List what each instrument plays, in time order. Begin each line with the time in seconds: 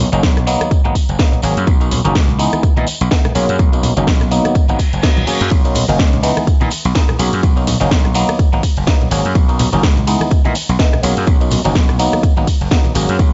0.12 slap bass F#1, clav F#3 A#3 C#4 D#4, closed hi-hat, tambourine, high conga
0.23 slap bass B1, kick, snare, closed hi-hat, tambourine
0.37 cross-stick, closed hi-hat, low conga
0.47 clav F#3 A#3 B3 D#4, open hi-hat, tambourine
0.61 cross-stick, closed hi-hat, tambourine, high conga
0.71 kick, closed hi-hat, tambourine
0.84 slap bass G#1, clav F#3 A#3 B3 D#4, closed hi-hat, high conga
0.95 kick, open hi-hat, tambourine
1.09 slap bass F#1, closed hi-hat, tambourine
1.19 clav F#3 A#3 B3 D#4, kick, snare, closed hi-hat, tambourine
1.32 closed hi-hat, low conga
1.42 slap bass G#1, clav F#3 A#3 C#4 G#4, open hi-hat, tambourine
1.57 slap bass F#2, closed hi-hat, tambourine
1.67 slap bass B1, kick, closed hi-hat, tambourine
1.80 clav F#3 A#3 C#4 D#4, closed hi-hat, tambourine
1.91 open hi-hat, tambourine, low conga
2.04 slap bass F#1, clav F#3 A#3 C#4 D#4, closed hi-hat, tambourine, high conga
2.15 slap bass C#2, kick, snare, closed hi-hat, tambourine
2.28 closed hi-hat, low conga
2.39 clav E3 G#3 B3 D#4, open hi-hat, tambourine
2.53 cross-stick, closed hi-hat, tambourine, high conga
2.63 muted slap bass stroke, kick, closed hi-hat, tambourine
2.76 slap bass A#2, clav E3 G#3 B3 D#4, closed hi-hat, high conga
2.87 open hi-hat, tambourine
3.01 slap bass B1, closed hi-hat, tambourine
3.11 clav E3 G#3 B3 D#4, kick, snare, closed hi-hat, tambourine
3.25 cross-stick, closed hi-hat, low conga
3.35 slap bass B1, clav F#3 A#3 C#4 G#4, open hi-hat, tambourine
3.49 slap bass F#2, closed hi-hat, tambourine
3.59 slap bass B1, kick, closed hi-hat, tambourine
3.72 clav F#3 A#3 C#4 D#4, closed hi-hat, tambourine
3.83 open hi-hat, tambourine, low conga
3.97 slap bass F#1, clav F#3 A#3 C#4 D#4, closed hi-hat, tambourine, high conga
4.07 slap bass B1, kick, snare, closed hi-hat, tambourine
4.20 cross-stick, closed hi-hat, tambourine, low conga
4.31 clav F#3 A#3 B3 D#4, open hi-hat, tambourine
4.45 cross-stick, closed hi-hat, tambourine, high conga
4.55 kick, closed hi-hat, tambourine, reverse cymbal
4.68 slap bass G#1, clav F#3 A#3 B3 D#4, closed hi-hat, tambourine, high conga
4.79 kick, open hi-hat, tambourine
4.93 slap bass F#1, closed hi-hat, tambourine
5.02 clav F#3 A#3 B3 D#4, kick, snare, closed hi-hat, tambourine
5.17 closed hi-hat, high conga, low conga
5.27 clav F#3 A#3 C#4 G#4, muted slap bass stroke, open hi-hat, tambourine
5.41 slap bass F#2, closed hi-hat, tambourine
5.51 slap bass B1, kick, closed hi-hat, ride, tambourine
5.64 clav F#3 A#3 C#4 D#4, closed hi-hat, tambourine
5.75 open hi-hat, ride, tambourine, low conga
5.88 slap bass F#1, clav F#3 A#3 C#4 D#4, closed hi-hat, tambourine, high conga
5.99 slap bass C#2, kick, snare, closed hi-hat, tambourine
6.13 closed hi-hat, low conga
6.23 clav E3 G#3 B3 D#4, open hi-hat, ride, tambourine
6.37 cross-stick, closed hi-hat, tambourine, high conga
6.47 muted slap bass stroke, kick, closed hi-hat, ride, tambourine
6.60 slap bass A#2, clav E3 G#3 B3 D#4, closed hi-hat, high conga
6.70 open hi-hat, ride, tambourine
6.85 slap bass B1, closed hi-hat, tambourine
6.95 clav E3 G#3 B3 D#4, kick, snare, closed hi-hat, ride, tambourine
7.09 cross-stick, closed hi-hat, low conga
7.19 slap bass B1, clav F#3 A#3 C#4 G#4, open hi-hat, ride, tambourine
7.33 slap bass F#2, closed hi-hat, tambourine
7.43 slap bass B1, kick, closed hi-hat, ride, tambourine
7.56 clav F#3 A#3 C#4 D#4, closed hi-hat, tambourine
7.67 open hi-hat, ride, tambourine, low conga
7.80 slap bass F#1, clav F#3 A#3 C#4 D#4, closed hi-hat, tambourine, high conga
7.91 slap bass B1, kick, snare, closed hi-hat, ride, tambourine
8.05 cross-stick, closed hi-hat, low conga
8.14 clav F#3 A#3 B3 D#4, open hi-hat, ride, tambourine
8.29 cross-stick, closed hi-hat, tambourine, high conga
8.39 kick, closed hi-hat, ride, tambourine
8.52 slap bass G#1, clav F#3 A#3 B3 D#4, closed hi-hat, high conga
8.63 kick, open hi-hat, ride, tambourine
8.76 slap bass F#1, closed hi-hat, tambourine
8.87 clav F#3 A#3 B3 D#4, kick, snare, closed hi-hat, ride, tambourine
9.01 closed hi-hat, low conga
9.11 slap bass G#1, clav F#3 A#3 C#4 G#4, open hi-hat, ride, tambourine
9.25 slap bass F#2, closed hi-hat
9.35 slap bass B1, kick, closed hi-hat, ride, tambourine
9.48 clav F#3 A#3 C#4 D#4, closed hi-hat, tambourine
9.59 open hi-hat, ride, tambourine, low conga
9.73 slap bass F#1, clav F#3 A#3 C#4 D#4, closed hi-hat, tambourine, high conga
9.83 slap bass C#2, kick, snare, closed hi-hat, ride, tambourine
9.97 closed hi-hat, low conga
10.07 clav E3 G#3 B3 D#4, open hi-hat, ride, tambourine
10.20 cross-stick, closed hi-hat, tambourine, high conga
10.31 muted slap bass stroke, kick, closed hi-hat, ride, tambourine
10.45 slap bass A#2, clav E3 G#3 B3 D#4, closed hi-hat, high conga
10.55 open hi-hat, ride, tambourine
10.69 slap bass B1, closed hi-hat, tambourine
10.79 clav E3 G#3 B3 D#4, kick, snare, closed hi-hat, ride, tambourine
10.93 cross-stick, closed hi-hat, low conga
11.03 slap bass B1, clav F#3 A#3 C#4 G#4, open hi-hat, ride, tambourine
11.17 slap bass F#2, closed hi-hat, tambourine
11.27 slap bass B1, kick, closed hi-hat, ride, tambourine
11.41 clav F#3 A#3 C#4 D#4, closed hi-hat, tambourine
11.50 open hi-hat, ride, tambourine, low conga
11.65 slap bass F#1, clav F#3 A#3 C#4 D#4, closed hi-hat, tambourine, high conga
11.75 slap bass B1, kick, snare, closed hi-hat, ride, tambourine
11.89 cross-stick, closed hi-hat, tambourine, low conga
11.99 clav F#3 A#3 B3 D#4, open hi-hat, ride, tambourine
12.12 cross-stick, closed hi-hat, tambourine, high conga
12.23 kick, closed hi-hat, ride, tambourine
12.36 slap bass G#1, clav F#3 A#3 B3 D#4, closed hi-hat, high conga
12.47 kick, open hi-hat, ride, tambourine
12.61 slap bass F#1, closed hi-hat, tambourine
12.71 clav F#3 A#3 B3 D#4, kick, snare, closed hi-hat, ride, tambourine
12.84 closed hi-hat, high conga, low conga
12.95 slap bass G#1, clav F#3 A#3 C#4 G#4, open hi-hat, ride, tambourine
13.09 slap bass F#2, closed hi-hat, tambourine
13.19 slap bass B1, kick, closed hi-hat, ride, tambourine